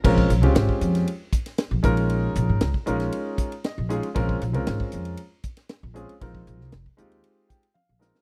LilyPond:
<<
  \new Staff \with { instrumentName = "Grand piano" } { \time 4/4 \key bes \dorian \tempo 4 = 117 << { r1 | r2. ees''8 aes''8 | r1 | r2 r8 g''8 f''8 ees''8 | } \\ { <aes c' des' f' bes'>8 r16 <aes c' des' f' g'>4~ <aes c' des' f' g'>16 r4. <aes des' ees' f' bes'>8~ | <aes des' ees' f' bes'>4 r8 <aes des' ees' f' bes'>4~ <aes des' ees' f' bes'>16 r8. <aes des' ees' f' aes'>16 r16 | <aes c' des' f' bes'>8 r16 <aes c' des' f' bes'>4~ <aes c' des' f' bes'>16 r4. <aes c' des' f' aes'>16 r16 | <aes c' ees' f' bes'>4 r8 <aes c' ees' f' g'>4~ <aes c' ees' f' g'>16 r8. <aes c' ees' f' bes'>16 r16 | } >> }
  \new Staff \with { instrumentName = "Upright bass" } { \clef bass \time 4/4 \key bes \dorian bes,,8 bes,,16 des,16 aes,,16 r16 f,8 r4 r16 bes,,16 bes,,8~ | bes,,8 bes,,16 aes,16 des,16 r16 bes,,8 r4 r16 bes,,8 r16 | bes,,8 bes,,16 des,16 aes,,16 r16 f,8 r4 r16 bes,,8 r16 | bes,,8 bes,,16 c,16 f,,16 r16 ees,8 r4 r16 bes,,8 r16 | }
  \new DrumStaff \with { instrumentName = "Drums" } \drummode { \time 4/4 <cymc bd>16 bd16 <hhp cymr sn>16 cymr16 <cymr sn>16 bd16 <hhp cymr>16 <cymr sn>16 cymr8 <hhp bd cymr>16 <cymr sn>16 <cymr sn>8 <hhp bd cymr>16 cymr16 | cymr8 <hhp cymr>8 <cymr sn>16 bd16 <hhp cymr>16 <cymr sn>16 cymr8 <hhp bd cymr>16 cymr16 <cymr sn>8 <hhp cymr>16 cymr16 | <bd cymr>16 bd16 <hhp cymr>16 cymr16 <cymr sn>16 bd16 <hhp cymr>16 cymr16 cymr8 <hhp bd cymr>16 <cymr sn>16 <cymr sn>8 <hhp cymr>16 cymr16 | <bd cymr>16 bd16 <hhp cymr>16 sn16 <cymr sn>16 bd16 <hhp cymr>16 cymr16 cymr8 <hhp bd cymr>16 cymr16 tommh8 <hhp sn>16 sn16 | }
>>